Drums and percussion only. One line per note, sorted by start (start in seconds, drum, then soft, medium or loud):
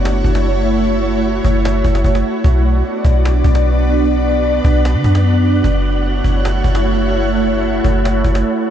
0.05 cajon slap loud
0.24 cajon bass loud
0.35 cajon slap loud
0.65 cajon slap soft
0.84 cajon slap soft
1.24 cajon slap soft
1.45 cajon bass loud
1.65 cajon slap loud
1.84 cajon bass loud
1.95 cajon slap loud
2.04 cajon bass loud
2.15 cajon slap medium
2.44 cajon bass loud
2.85 cajon slap soft
3.05 cajon bass loud
3.18 cajon slap soft
3.25 cajon slap loud
3.44 cajon bass loud
3.55 cajon slap loud
3.84 cajon slap soft
4.04 cajon slap soft
4.44 cajon slap soft
4.64 cajon bass medium
4.78 cajon slap soft
4.85 cajon slap loud
5.04 cajon bass loud
5.15 cajon slap loud
5.44 cajon slap soft
5.64 cajon bass loud
6.04 cajon slap soft
6.24 cajon bass medium
6.31 cajon slap soft
6.38 cajon slap soft
6.45 cajon slap loud
6.64 cajon bass loud
6.75 cajon slap loud
7.04 cajon slap soft
7.24 cajon slap soft
7.64 cajon slap soft
7.85 cajon bass medium
8.05 cajon slap loud
8.24 cajon bass loud
8.35 cajon slap loud